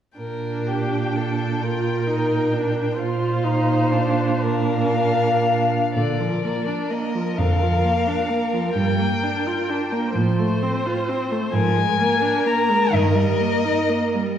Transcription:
0.18 cello A#2, viola D4, violin A#4 G5
0.67 violin G4
1.16 violin A4
1.62 viola F4, violin A#4
2.07 viola D#4
2.52 viola D4
2.98 cello A#2, viola F4, violin C5 F5
3.44 viola D#4
3.92 viola D4
4.41 viola D4, violin A#4 F5
5.95 cello A#2, viola D3, violin A#4 D5
6.20 viola F3
6.45 viola A#3
6.67 viola D4
6.90 viola A#3, violin D#5
7.14 viola F3
7.38 cello F2, viola D3, violin F5
7.63 viola F3
7.85 viola A#3
8.07 viola D4
8.30 viola A#3
8.53 viola F3
8.76 cello G2, viola G3, violin G5
8.99 viola A#3
9.24 viola D4
9.46 viola F4
9.69 viola D4
9.92 viola A#3
10.15 cello A2, viola F3, violin C5
10.39 viola A3
10.62 viola C4
10.86 viola F4
11.09 viola C4
11.31 viola A3
11.53 cello G#2, viola F3, violin A#4 G#5
11.75 viola G#3
12.00 viola A#3
12.22 viola D4
12.46 viola A#3, violin A#5
12.69 viola G#3
12.92 cello G2, viola D#3, violin D#5
13.15 viola G3
13.40 viola A#3
13.65 viola D#4
13.90 viola A#3
14.14 viola G3

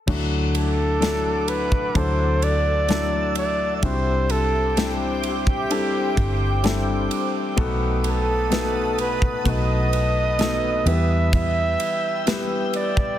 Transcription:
0.07 fingered electric bass D2, grand piano D3 F#3 A3 D4 E4 F#4, ambient pad A4 E5 F#5 D6, kick, crash
0.55 flugelhorn A4, ride
1.00 grand piano F#3 A3 D4 E4 A4, snare, ride
1.48 flugelhorn B4, ride
1.72 kick
1.94 fingered electric bass D2, grand piano F#3 A3 D4 E4 A4, flugelhorn C5, ambient pad E6, kick, ride
2.42 flugelhorn D5, ride
2.88 grand piano F#3 A3 D4 E4 A4, snare, ride
3.35 flugelhorn D5, ride
3.77 flugelhorn D5
3.82 fingered electric bass C2, grand piano C3 G3 C4 D4 E4 F#4, ambient pad C5 G5 D6, flugelhorn C5, kick, ride
3.90 grand piano G4
4.30 flugelhorn A4, ride
4.76 grand piano G3 C4 D4 E4 G4, snare, ride
5.23 flugelhorn G4, ride
5.47 kick
5.70 grand piano G3 C4 D4 E4 A4, ride
6.17 fingered electric bass G1, kick, ride
6.63 grand piano G3 C4 D4 E4 A4, snare, ride
7.11 ride
7.56 fingered electric bass B1, grand piano B2 A3 B3 D#4 F#4 A4, ambient pad B4 F#5 A5 D#6, kick, ride
8.04 flugelhorn A4, ride
8.50 grand piano A3 B3 D#4 F#4 B4, snare, ride
8.98 flugelhorn B4, ride
9.22 kick
9.44 fingered electric bass B1, grand piano A3 B3 D#4 F#4 B4, flugelhorn D#5, kick, ride
9.93 ride
10.39 grand piano A3 B3 D#4 F#4 A4, snare, ride
10.85 fingered electric bass E2, grand piano E3 G3 B3 E4 G4 B4, ambient pad E5 G5 E6, flugelhorn E5, ride
11.33 flugelhorn E5, kick, ride
11.80 ride
12.26 grand piano G3 B3 E4 G4 B4, snare, ride
12.74 flugelhorn D5, ride
12.97 kick

